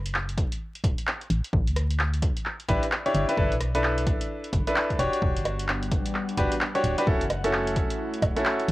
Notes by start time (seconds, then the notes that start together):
Already playing: F#1
0.06 closed hi-hat
0.14 clap
0.29 closed hi-hat
0.38 kick, closed hi-hat
0.52 closed hi-hat
0.75 closed hi-hat
0.84 D1, kick, closed hi-hat
0.98 closed hi-hat
1.07 clap
1.21 closed hi-hat
1.30 A1, closed hi-hat
1.44 closed hi-hat
1.53 A1, kick
1.67 D2, closed hi-hat
1.76 cross-stick, closed hi-hat
1.90 closed hi-hat
1.99 clap
2.13 closed hi-hat
2.22 kick, closed hi-hat
2.37 closed hi-hat
2.45 clap
2.60 closed hi-hat
2.68 A1 D4 E4 G4 B4, kick, closed hi-hat
2.83 cross-stick, closed hi-hat
2.92 clap
3.06 D4 E4 G4 C#5, closed hi-hat
3.15 G1, closed hi-hat
3.29 D4 E4 G4 B4, closed hi-hat
3.37 G1 D4 E4 A4 B4, kick
3.52 B1, closed hi-hat
3.61 cross-stick, closed hi-hat
3.75 D4 E4 A4 B4, closed hi-hat
3.84 clap
3.98 closed hi-hat
4.07 kick, closed hi-hat
4.21 closed hi-hat
4.44 closed hi-hat
4.53 G1, kick, closed hi-hat
4.67 D4 E4 A4 B4, closed hi-hat
4.76 clap
4.90 kick, closed hi-hat
4.99 E1 D4 F#4 G4 C#5, closed hi-hat
5.13 closed hi-hat
5.22 E1 G3 B3 D4 F#5, kick
5.36 G1, closed hi-hat
5.45 cross-stick, closed hi-hat, high bongo
5.59 closed hi-hat
5.68 clap
5.83 closed hi-hat
5.91 kick, closed hi-hat
6.06 closed hi-hat
6.15 clap
6.29 closed hi-hat
6.37 E1 D4 F#4 G4 B4, kick, closed hi-hat
6.52 cross-stick, closed hi-hat
6.61 clap
6.75 D4 F#4 G4 C#5, closed hi-hat
6.84 D1, closed hi-hat
6.98 D4 F#4 G4 B4, closed hi-hat
7.07 D1 A3 C#4 E4 F#4 A4, kick
7.21 F#1, closed hi-hat
7.30 cross-stick, closed hi-hat, high bongo
7.44 C#4 E4 F#4 A4, closed hi-hat
7.53 clap
7.67 closed hi-hat
7.76 kick, closed hi-hat
7.90 closed hi-hat
8.14 closed hi-hat
8.22 D1, kick, closed hi-hat, high bongo
8.36 C#4 E4 F#4 A4, closed hi-hat
8.45 clap
8.60 closed hi-hat
8.68 A1 B3 D4 G4, closed hi-hat